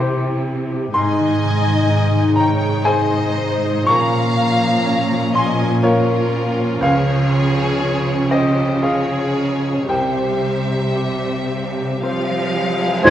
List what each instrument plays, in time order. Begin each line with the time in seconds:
Already playing: grand piano C2 E4 E5, cello section C3, harp C3 E3 G4, viola section E4 G4
0.00 grand piano G4 C5
0.24 harp G4
0.47 harp G#4
0.72 harp G4
0.94 grand piano G#2 C6, harp G#2, cello section G#2, viola section G#3 D#4, violin section D#5 G#5
1.19 harp D#3
1.43 harp C3
1.66 harp D#3
1.89 grand piano D#4, harp D#4
2.13 harp D#3
2.35 harp G#3, violin section C#5 G5, grand piano A#5
2.60 harp G#4
2.85 harp C4, grand piano G#4 C5 G#5, violin section C5 D#5
3.10 harp G#4
3.37 harp A#4
3.62 harp G#4
3.87 cello section A#2, grand piano A#2 C#6, harp A#2, viola section F3 C#4, violin section F5 A#5
4.13 harp F3
4.38 harp A#3
4.63 harp F3
4.86 harp A#3, grand piano C#4
5.10 harp F3
5.34 harp A#3, violin section D#5 G#5, grand piano C6
5.60 harp F4
5.83 harp A#3, violin section F4 A#4, grand piano F4 A#4 C#5
6.09 harp F4
6.33 harp G4
6.59 harp F4
6.81 grand piano C#2 F5, cello section C#3, harp C#3, violin section G#4 C#5
7.07 harp G#3
7.32 harp C#4
7.56 harp G#3
7.80 grand piano C#4, harp C#4
8.06 harp G#3
8.30 harp C#4, violin section G4 C5, grand piano D#5
8.58 harp G#4
8.82 harp C#4, grand piano F4 G#4 F5, violin section G#4 C#5
9.10 harp G#4
9.36 harp A#4
9.62 harp G#4
9.88 grand piano C2 G5, cello section C3, harp C3, viola section G3 G4, violin section C5 E5
10.17 harp G3
10.44 harp C4
10.71 harp G3
10.96 harp C4, grand piano G4
11.23 harp G3
11.49 harp C4
11.76 harp G4
12.01 cello section F3, grand piano C4 C5, harp C4, violin section F5
12.56 harp F4
12.82 harp E4
13.05 double bass section G#1, grand piano G#2, french horn section D#3 C4, cello section G#3, violin section G#4 G#5, cor anglais C5, flute G#6, tam-tam